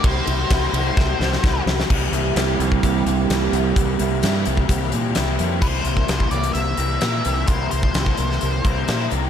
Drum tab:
CC |----------------|x---------------|----------------|x---------------|
RD |x-x-x-x---------|----------------|----------------|----------------|
HH |----------------|--x-x-x-x-x-x-x-|x-x-x-x-x-x-x-x-|--x-x-xxx-x-x-x-|
SD |----o---o-ooo-oo|----o-------o---|----o-------o---|----o-------o---|
BD |o---o---o---o---|o------oo-------|o------oo-------|o--o-o----------|

CC |----------------|
RD |----------------|
HH |x-x-x-x-x-x-x-x-|
SD |----o--o----o---|
BD |o--o-o----o-----|